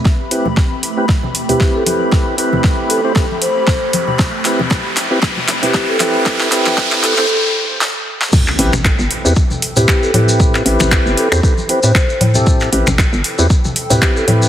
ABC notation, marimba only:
X:1
M:4/4
L:1/16
Q:"Swing 16ths" 1/4=116
K:Am
V:1 name="Marimba"
z8 z3 G z A z2 | z6 A z3 c3 z3 | z8 z3 G z A z2 | z6 A A z8 |
z8 z3 G z A z2 | z6 A z3 c3 z3 | z8 z3 G z A z2 |]